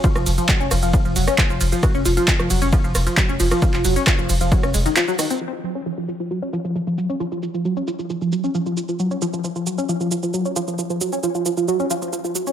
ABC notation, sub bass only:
X:1
M:4/4
L:1/16
Q:1/4=134
K:Db
V:1 name="Sub bass" clef=bass
z F,,, F,,, z2 F,,, F,,, F,,, z F,,, F,,, z2 F,,, F,,, z | z F,,, F,,, z2 F,,, F,,, F,,, z F,,, F,,, z2 F,,, F,,, z | z F,,, F,,, z2 F,,, F,,, F,,, z F,,, F,,, z4 z | z16 |
z16 | z16 | z16 |]